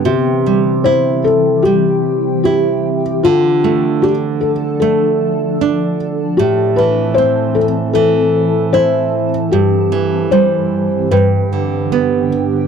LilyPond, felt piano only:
\new Staff \with { instrumentName = "Felt piano" } { \time 4/4 \key c \major \tempo 4 = 76 g'4 c''8 a'8 g'4 g'8. r16 | f'4 g'8 a'8 a'4. r8 | g'8 b'8 c''8 a'8 a'4 c''8. r16 | g'4 c''4 b'4. r8 | }